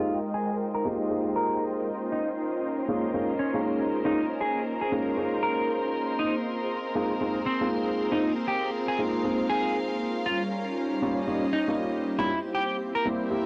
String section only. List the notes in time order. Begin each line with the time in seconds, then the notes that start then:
Already playing: G#3 F4 A#4 D#5 G5
1.87 C#4
6.19 C4
6.68 G#4
8.03 F5
10.26 C#4
10.57 G4
11.19 D#5
12.29 C4
13.23 A#4 E5